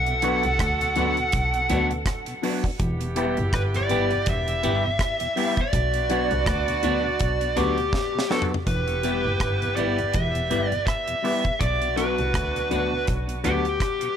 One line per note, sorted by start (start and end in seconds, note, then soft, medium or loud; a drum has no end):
0.00 0.40 B1 loud
0.00 2.39 D4 medium
0.00 2.39 F#4 medium
0.00 2.38 A4 loud
0.00 1.87 F#5 medium
0.06 0.14 B2 medium
0.06 closed hi-hat soft
0.22 0.44 F#3 medium
0.22 0.32 F#3 medium
0.22 0.39 B3 medium
0.22 0.44 B3 medium
0.22 0.33 B3 medium
0.22 0.39 D4 medium
0.22 0.44 D4 medium
0.22 0.33 D4 medium
0.22 0.39 F#4 medium
0.22 0.44 F#4 loud
0.22 0.39 B4 loud
0.22 closed hi-hat medium
0.43 0.59 C2 medium
0.43 0.51 B2 medium
0.43 closed hi-hat soft
0.59 0.94 D2 loud
0.59 kick loud
0.59 cross-stick loud
0.59 closed hi-hat medium
0.81 0.88 B2 medium
0.81 closed hi-hat medium
0.96 1.16 D2 medium
0.96 1.17 F#3 medium
0.96 1.06 F#3 medium
0.96 1.12 B3 loud
0.96 1.18 B3 medium
0.96 1.06 B3 medium
0.96 1.12 D4 medium
0.96 1.18 D4 medium
0.96 1.07 D4 medium
0.96 1.12 F#4 medium
0.96 1.18 F#4 medium
0.96 1.12 B4 loud
0.96 closed hi-hat medium
1.17 1.25 B2 medium
1.17 closed hi-hat soft
1.32 1.67 B1 medium
1.32 kick loud
1.32 closed hi-hat medium
1.54 1.61 B2 medium
1.54 closed hi-hat medium
1.69 1.89 D2 loud
1.69 1.91 F#3 medium
1.69 1.79 F#3 medium
1.69 1.85 B3 medium
1.69 1.91 B3 medium
1.69 1.80 B3 medium
1.69 1.85 D4 medium
1.69 1.91 D4 medium
1.69 1.80 D4 medium
1.69 1.86 F#4 medium
1.69 1.91 F#4 loud
1.69 1.86 B4 loud
1.69 closed hi-hat medium
1.91 1.98 B2 medium
1.91 1.97 F#4 soft
1.91 1.97 B4 soft
1.91 closed hi-hat soft
2.06 kick loud
2.06 cross-stick loud
2.06 closed hi-hat medium
2.26 2.35 B2 medium
2.26 closed hi-hat medium
2.42 2.64 F#3 medium
2.42 2.53 F#3 medium
2.42 2.58 B3 medium
2.42 2.53 B3 medium
2.42 2.64 B3 medium
2.42 2.59 D4 medium
2.42 2.53 D4 medium
2.42 2.65 D4 medium
2.42 2.59 F#4 medium
2.42 2.65 F#4 medium
2.42 2.59 B4 loud
2.42 open hi-hat medium
2.64 2.71 B3 medium
2.64 2.71 D4 medium
2.64 kick medium
2.78 3.33 E1 loud
2.78 5.32 B3 medium
2.78 5.32 E4 medium
2.78 5.32 G4 loud
2.78 kick loud
2.78 closed hi-hat medium
3.00 3.08 E2 medium
3.00 3.08 B2 medium
3.00 closed hi-hat medium
3.15 3.26 G3 medium
3.15 3.37 G3 medium
3.15 3.32 B3 medium
3.15 3.37 B3 loud
3.15 3.26 B3 medium
3.15 3.32 E4 medium
3.15 3.26 E4 medium
3.15 3.38 E4 medium
3.15 3.32 G4 medium
3.15 3.38 G4 medium
3.15 3.32 B4 loud
3.15 closed hi-hat medium
3.37 3.52 F#1 medium
3.37 3.45 E2 medium
3.37 3.45 B2 medium
3.37 closed hi-hat soft
3.53 3.87 G1 loud
3.53 3.60 B4 medium
3.53 kick loud
3.53 cross-stick loud
3.53 closed hi-hat medium
3.74 3.81 E2 medium
3.74 3.81 B2 medium
3.74 4.29 D5 loud
3.74 closed hi-hat medium
3.89 4.09 G1 medium
3.89 3.99 G3 medium
3.89 4.11 G3 medium
3.89 4.05 B3 medium
3.89 3.99 B3 medium
3.89 4.11 B3 medium
3.89 4.05 E4 medium
3.89 4.00 E4 medium
3.89 4.11 E4 loud
3.89 4.06 G4 medium
3.89 4.11 G4 medium
3.89 4.06 B4 loud
3.89 closed hi-hat medium
4.11 4.18 E2 medium
4.11 4.18 B2 medium
4.11 closed hi-hat soft
4.26 4.61 E1 medium
4.26 5.62 E5 loud
4.26 kick loud
4.26 closed hi-hat medium
4.48 4.55 E2 medium
4.48 4.55 B2 medium
4.48 closed hi-hat medium
4.63 4.83 G1 medium
4.63 4.84 G3 loud
4.63 4.73 G3 medium
4.63 4.79 B3 medium
4.63 4.73 B3 medium
4.63 4.84 B3 medium
4.63 4.79 E4 medium
4.63 4.73 E4 medium
4.63 4.85 E4 loud
4.63 4.79 G4 medium
4.63 4.85 G4 loud
4.63 4.79 B4 loud
4.63 closed hi-hat medium
4.83 4.91 E2 medium
4.83 4.91 B2 medium
4.83 4.90 G4 soft
4.83 4.90 B4 soft
4.99 kick loud
4.99 cross-stick loud
4.99 closed hi-hat medium
5.20 5.28 E2 medium
5.20 5.28 B2 medium
5.20 closed hi-hat medium
5.36 5.46 G3 medium
5.36 5.58 G3 medium
5.36 5.52 B3 medium
5.36 5.46 B3 medium
5.36 5.58 B3 medium
5.36 5.52 E4 medium
5.36 5.46 E4 medium
5.36 5.58 E4 medium
5.36 5.52 G4 medium
5.36 5.58 G4 medium
5.36 5.53 B4 loud
5.36 open hi-hat medium
5.57 5.65 E2 medium
5.57 5.65 B2 medium
5.57 7.75 D5 medium
5.57 kick medium
5.57 closed hi-hat soft
5.72 6.27 B1 loud
5.72 8.26 B3 medium
5.72 8.26 D4 medium
5.72 8.26 F#4 loud
5.72 kick loud
5.72 closed hi-hat medium
5.94 6.01 B2 medium
5.94 closed hi-hat soft
6.09 6.19 F#3 medium
6.09 6.31 F#3 medium
6.09 6.26 B3 medium
6.09 6.20 B3 medium
6.09 6.31 B3 medium
6.09 6.26 D4 medium
6.09 6.20 D4 medium
6.09 6.32 D4 medium
6.09 6.26 F#4 medium
6.09 6.32 F#4 loud
6.09 6.26 B4 loud
6.09 closed hi-hat medium
6.31 6.46 C2 medium
6.31 6.38 B2 medium
6.31 closed hi-hat soft
6.46 6.80 D2 loud
6.46 kick loud
6.46 cross-stick loud
6.46 closed hi-hat medium
6.67 6.75 B2 medium
6.67 closed hi-hat medium
6.83 7.03 D2 medium
6.83 7.04 F#3 medium
6.83 6.93 F#3 medium
6.83 6.99 B3 medium
6.83 7.04 B3 medium
6.83 6.93 B3 medium
6.83 6.99 D4 medium
6.83 7.05 D4 loud
6.83 6.93 D4 medium
6.83 6.99 F#4 medium
6.83 7.05 F#4 loud
6.83 7.00 B4 loud
6.83 closed hi-hat medium
7.05 7.12 B2 medium
7.19 7.54 B1 medium
7.19 kick loud
7.19 closed hi-hat medium
7.41 7.48 B2 medium
7.41 closed hi-hat soft
7.56 7.76 D2 medium
7.56 7.66 F#3 medium
7.56 7.78 F#3 medium
7.56 7.72 B3 medium
7.56 7.66 B3 medium
7.56 7.78 B3 medium
7.56 7.72 D4 medium
7.56 7.78 D4 loud
7.56 7.67 D4 medium
7.56 7.73 F#4 medium
7.56 7.78 F#4 loud
7.56 8.26 G4 medium
7.56 7.73 B4 loud
7.56 closed hi-hat medium
7.77 7.85 B2 medium
7.77 7.84 F#4 soft
7.77 7.84 B4 soft
7.77 closed hi-hat soft
7.93 kick loud
7.93 snare medium
8.15 8.22 B2 medium
8.15 snare medium
8.30 8.51 F#3 medium
8.30 8.40 F#3 medium
8.30 8.46 B3 medium
8.30 8.51 B3 medium
8.30 8.40 B3 medium
8.30 8.46 D4 medium
8.30 8.52 D4 medium
8.30 8.40 D4 medium
8.30 8.46 F#4 medium
8.30 8.52 F#4 loud
8.30 8.41 A4 medium
8.30 8.47 B4 loud
8.30 snare medium
8.42 floor tom loud
8.51 8.58 B3 medium
8.51 8.59 D4 medium
8.51 floor tom medium
8.66 9.21 E1 loud
8.66 11.19 B3 medium
8.66 11.19 E4 medium
8.66 11.19 G4 medium
8.66 9.75 B4 medium
8.66 kick loud
8.66 closed hi-hat medium
8.88 8.95 E2 medium
8.88 8.95 B2 medium
8.88 closed hi-hat soft
9.03 9.13 G3 medium
9.03 9.25 G3 medium
9.03 9.19 B3 medium
9.03 9.13 B3 medium
9.03 9.25 B3 medium
9.03 9.19 E4 medium
9.03 9.13 E4 medium
9.03 9.25 E4 medium
9.03 9.19 G4 medium
9.03 9.26 G4 medium
9.03 9.20 B4 loud
9.03 closed hi-hat medium
9.25 9.39 F#1 medium
9.40 9.74 G1 loud
9.40 kick loud
9.40 cross-stick loud
9.40 closed hi-hat medium
9.62 9.69 E2 medium
9.62 9.69 B2 medium
9.62 closed hi-hat soft
9.76 9.97 G1 medium
9.76 9.98 G3 medium
9.76 9.87 G3 medium
9.76 9.92 B3 medium
9.76 9.87 B3 medium
9.76 9.99 B3 medium
9.76 9.93 E4 medium
9.76 9.87 E4 medium
9.76 9.99 E4 medium
9.76 9.93 G4 medium
9.76 9.99 G4 medium
9.76 9.93 B4 medium
9.76 10.14 D5 medium
9.76 closed hi-hat medium
9.98 10.06 E2 medium
9.98 10.06 B2 medium
9.98 closed hi-hat soft
10.12 10.48 E1 medium
10.12 10.68 E5 loud
10.12 kick loud
10.12 closed hi-hat medium
10.35 10.42 E2 medium
10.35 10.42 B2 medium
10.35 closed hi-hat soft
10.50 10.70 G1 medium
10.50 10.72 G3 medium
10.50 10.60 G3 medium
10.50 10.66 B3 medium
10.50 10.72 B3 medium
10.50 10.60 B3 medium
10.50 10.67 E4 medium
10.50 10.72 E4 medium
10.50 10.60 E4 medium
10.50 10.72 G4 medium
10.50 10.67 G4 medium
10.50 10.67 B4 loud
10.50 closed hi-hat medium
10.68 10.79 E2 medium
10.68 10.79 B2 medium
10.68 10.86 D5 loud
10.68 closed hi-hat soft
10.87 11.63 E5 loud
10.87 kick loud
10.87 cross-stick loud
10.87 closed hi-hat medium
11.08 11.15 E2 medium
11.08 11.15 B2 medium
11.08 closed hi-hat medium
11.22 11.33 G3 medium
11.22 11.45 G3 medium
11.22 11.33 B3 medium
11.22 11.39 B3 medium
11.22 11.45 B3 medium
11.22 11.33 E4 medium
11.22 11.40 E4 medium
11.22 11.45 E4 medium
11.22 11.40 G4 medium
11.22 11.45 G4 medium
11.22 11.40 B4 loud
11.22 open hi-hat medium
11.44 11.52 E2 medium
11.44 11.52 B2 medium
11.44 kick medium
11.44 closed hi-hat soft
11.60 12.14 B1 loud
11.60 14.13 B3 medium
11.60 14.13 D4 medium
11.60 14.13 F#4 medium
11.60 11.97 D5 loud
11.60 kick loud
11.60 closed hi-hat medium
11.81 11.89 B2 medium
11.81 closed hi-hat soft
11.96 12.06 F#3 medium
11.96 12.18 F#3 medium
11.96 12.06 B3 medium
11.96 12.13 B3 medium
11.96 12.19 B3 medium
11.96 12.06 D4 medium
11.96 12.13 D4 medium
11.96 12.19 D4 medium
11.96 12.13 F#4 medium
11.96 12.19 F#4 medium
11.96 13.03 B4 medium
11.96 12.13 B4 loud
11.96 closed hi-hat medium
12.18 12.34 C2 medium
12.18 closed hi-hat soft
12.34 12.68 D2 medium
12.34 kick loud
12.34 cross-stick loud
12.34 closed hi-hat medium
12.54 12.62 B2 medium
12.54 closed hi-hat soft
12.70 12.91 D2 medium
12.70 12.80 F#3 medium
12.70 12.92 F#3 medium
12.70 12.80 B3 medium
12.70 12.86 B3 medium
12.70 12.92 B3 medium
12.70 12.80 D4 medium
12.70 12.87 D4 medium
12.70 12.92 D4 medium
12.70 12.87 F#4 medium
12.70 12.92 F#4 medium
12.70 12.87 B4 loud
12.70 closed hi-hat medium
12.91 12.99 B2 medium
13.07 13.42 B1 medium
13.07 kick loud
13.07 closed hi-hat medium
13.27 13.35 B2 medium
13.27 closed hi-hat soft
13.43 13.64 D2 medium
13.43 13.53 F#3 medium
13.43 13.65 F#3 medium
13.43 13.60 B3 medium
13.43 13.53 B3 medium
13.43 13.65 B3 medium
13.43 13.60 D4 medium
13.43 13.54 D4 medium
13.43 13.65 D4 medium
13.43 13.60 F#4 medium
13.43 13.66 F#4 medium
13.43 14.17 G4 medium
13.43 13.60 B4 loud
13.43 closed hi-hat medium
13.65 closed hi-hat soft
13.80 kick loud
13.80 cross-stick loud
13.80 closed hi-hat medium
14.01 14.09 B2 medium
14.01 closed hi-hat medium